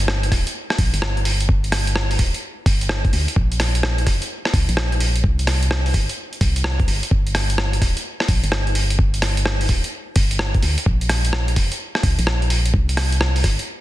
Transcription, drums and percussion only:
0.08 cross-stick
0.23 closed hi-hat
0.32 kick, cross-stick, open hi-hat
0.47 closed hi-hat
0.70 cross-stick
0.78 kick, open hi-hat
0.94 closed hi-hat
1.02 cross-stick
1.17 closed hi-hat
1.25 open hi-hat
1.41 closed hi-hat
1.49 kick
1.64 closed hi-hat
1.72 cross-stick, open hi-hat
1.87 closed hi-hat
1.96 cross-stick
2.11 open hi-hat
2.19 kick, open hi-hat
2.34 closed hi-hat
2.66 kick, open hi-hat
2.81 closed hi-hat
2.89 cross-stick
3.05 kick, closed hi-hat
3.13 open hi-hat
3.28 closed hi-hat
3.36 kick
3.52 closed hi-hat
3.60 cross-stick, open hi-hat
3.75 closed hi-hat
3.83 cross-stick
3.98 closed hi-hat
4.07 kick, cross-stick, open hi-hat
4.22 closed hi-hat
4.45 cross-stick
4.54 kick, open hi-hat
4.69 closed hi-hat
4.77 cross-stick
4.92 closed hi-hat
5.00 open hi-hat
5.16 closed hi-hat
5.24 kick
5.39 closed hi-hat
5.47 cross-stick, open hi-hat
5.63 closed hi-hat
5.71 cross-stick
5.86 open hi-hat
5.94 kick, open hi-hat
6.09 closed hi-hat
6.33 closed hi-hat
6.41 kick, open hi-hat
6.56 closed hi-hat
6.64 cross-stick
6.80 kick, closed hi-hat
6.88 open hi-hat
7.03 closed hi-hat
7.11 kick
7.27 closed hi-hat
7.35 cross-stick, open hi-hat
7.50 closed hi-hat
7.58 cross-stick
7.73 closed hi-hat
7.82 kick, cross-stick, open hi-hat
7.97 closed hi-hat
8.20 cross-stick
8.28 kick, open hi-hat
8.44 closed hi-hat
8.52 cross-stick
8.67 closed hi-hat
8.75 open hi-hat
8.90 closed hi-hat
8.99 kick
9.14 closed hi-hat
9.22 cross-stick, open hi-hat
9.37 closed hi-hat
9.46 cross-stick
9.61 open hi-hat
9.69 kick, open hi-hat
9.84 closed hi-hat
10.16 kick, open hi-hat
10.31 closed hi-hat
10.39 cross-stick
10.54 kick, closed hi-hat
10.62 open hi-hat
10.78 closed hi-hat
10.86 kick
11.01 closed hi-hat
11.09 cross-stick, open hi-hat
11.25 closed hi-hat
11.33 cross-stick
11.48 closed hi-hat
11.56 kick, open hi-hat
11.72 closed hi-hat
11.95 cross-stick
12.03 kick, open hi-hat
12.19 closed hi-hat
12.27 cross-stick
12.42 closed hi-hat
12.50 open hi-hat
12.66 closed hi-hat
12.74 kick
12.89 closed hi-hat
12.97 cross-stick, open hi-hat
13.12 closed hi-hat
13.21 cross-stick
13.36 open hi-hat
13.44 kick, cross-stick, open hi-hat
13.59 closed hi-hat

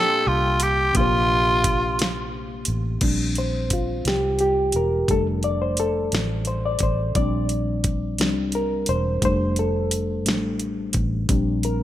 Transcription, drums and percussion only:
0.60 closed hi-hat
0.95 kick, closed hi-hat
1.64 kick, closed hi-hat
1.99 snare, closed hi-hat
2.65 closed hi-hat
3.01 kick, closed hi-hat, crash
3.35 closed hi-hat
3.70 kick, closed hi-hat
4.05 snare, closed hi-hat
4.39 closed hi-hat
4.72 closed hi-hat
5.08 kick, closed hi-hat
5.43 closed hi-hat
5.77 closed hi-hat
6.12 snare, closed hi-hat
6.45 closed hi-hat
6.79 kick, closed hi-hat
7.15 kick, closed hi-hat
7.49 closed hi-hat
7.84 kick, closed hi-hat
8.18 snare, closed hi-hat
8.52 closed hi-hat
8.86 closed hi-hat
9.22 kick, closed hi-hat
9.56 closed hi-hat
9.91 closed hi-hat
10.26 snare, closed hi-hat
10.60 closed hi-hat
10.93 kick, closed hi-hat
11.29 kick, closed hi-hat
11.63 closed hi-hat

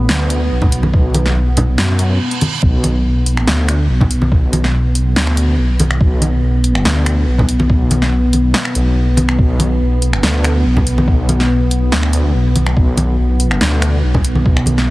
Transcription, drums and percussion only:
0.09 snare
0.30 closed hi-hat
0.62 kick, low conga
0.72 closed hi-hat
0.83 high conga
0.94 kick
1.14 closed hi-hat, high conga
1.26 snare
1.57 closed hi-hat, low conga
1.78 snare
1.99 closed hi-hat
2.31 closed hi-hat
2.41 closed hi-hat, high conga
2.63 kick
2.84 closed hi-hat, high conga
3.26 closed hi-hat
3.37 finger snap
3.47 snare
3.68 finger snap, closed hi-hat
4.01 kick, low conga
4.11 closed hi-hat
4.22 high conga
4.32 kick
4.53 closed hi-hat, high conga
4.64 snare
4.95 closed hi-hat
5.16 snare
5.27 finger snap
5.37 closed hi-hat
5.80 closed hi-hat, high conga
5.91 finger snap
6.01 kick
6.22 closed hi-hat, high conga
6.64 closed hi-hat
6.75 finger snap
6.85 snare
7.06 finger snap, closed hi-hat
7.38 kick, low conga
7.49 closed hi-hat
7.60 high conga
7.70 kick
7.91 closed hi-hat, high conga
8.02 snare
8.33 closed hi-hat, high conga
8.54 snare
8.65 finger snap
8.75 closed hi-hat
9.17 closed hi-hat, high conga
9.29 finger snap
9.39 kick
9.60 closed hi-hat, high conga
10.02 closed hi-hat
10.13 finger snap
10.23 snare
10.44 finger snap, closed hi-hat
10.77 kick, low conga
10.87 closed hi-hat
10.98 high conga
11.08 kick
11.29 closed hi-hat, high conga
11.40 snare
11.71 closed hi-hat
11.92 snare
12.03 finger snap
12.13 closed hi-hat
12.56 closed hi-hat, high conga
12.66 finger snap
12.77 kick
12.97 closed hi-hat, high conga
13.40 closed hi-hat
13.51 finger snap
13.61 snare
13.82 finger snap, closed hi-hat
14.14 kick, low conga
14.24 closed hi-hat
14.35 high conga
14.46 kick
14.57 finger snap
14.66 closed hi-hat, high conga
14.78 snare

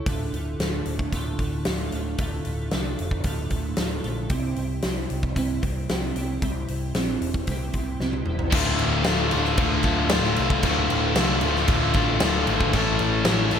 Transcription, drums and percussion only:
0.06 kick, open hi-hat
0.34 open hi-hat
0.60 snare, open hi-hat
0.85 open hi-hat
0.99 kick
1.12 kick, open hi-hat
1.39 kick, open hi-hat
1.65 snare, open hi-hat
1.92 open hi-hat
2.18 kick, open hi-hat
2.45 open hi-hat
2.71 snare, open hi-hat
2.99 open hi-hat
3.11 kick
3.24 kick, open hi-hat
3.50 kick, open hi-hat
3.77 snare, open hi-hat
4.04 open hi-hat
4.29 kick, open hi-hat
4.56 open hi-hat
4.82 snare, open hi-hat
5.10 open hi-hat
5.23 kick
5.36 kick, open hi-hat
5.63 kick, open hi-hat
5.89 snare, open hi-hat
6.16 open hi-hat
6.42 kick, open hi-hat
6.68 open hi-hat
6.95 snare, open hi-hat
7.22 open hi-hat
7.34 kick
7.47 kick, open hi-hat
7.73 kick, open hi-hat
8.00 snare
8.13 high tom
8.26 mid tom
8.39 floor tom
8.52 kick, crash
8.79 crash
9.04 snare, crash
9.31 crash
9.45 snare
9.57 kick, crash
9.83 kick, crash
10.09 snare, crash
10.24 snare
10.36 crash
10.50 kick
10.63 kick, crash
10.90 crash
11.15 snare, crash
11.41 crash
11.56 snare
11.68 kick, crash
11.94 kick, crash
12.20 snare, crash
12.47 crash
12.61 kick
12.73 kick, crash
12.99 crash
13.25 snare, crash
13.51 crash

